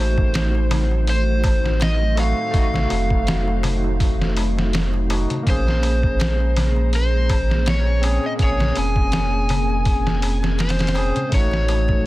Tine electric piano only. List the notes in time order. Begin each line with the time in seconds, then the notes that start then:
Already playing: A3 D#4 F#4
2.15 A3 D#4
2.19 F#4
2.51 A3 D#4
2.59 F#4
5.08 A3 D#4
5.12 F#4
5.43 A#3
5.47 C#4
5.51 G#4
8.02 C4 C#4 G#4
8.36 A#3
8.40 C#4 G#4
10.94 C4 C#4 G#4
11.29 A3
11.33 D#4 F#4